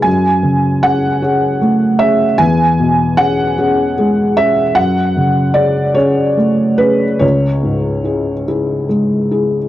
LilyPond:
\new Staff \with { instrumentName = "Felt piano" } { \time 6/8 \key fis \minor \tempo 4. = 50 << { gis''4 fis''4. e''8 | gis''4 fis''4. e''8 | fis''4 d''8 cis''4 b'8 | cis''4. r4. | } \\ { fis,8 cis8 <cis' gis'>8 <cis' gis'>8 a8 <cis' gis'>8 | e,8 b,8 <cis' gis'>8 <cis' gis'>8 gis8 <cis' gis'>8 | fis,8 cis8 <cis' gis'>8 <cis' gis'>8 a8 <cis' gis'>8 | cis,8 gis,8 <e' gis'>8 <e' gis'>8 gis8 <e' gis'>8 | } >> }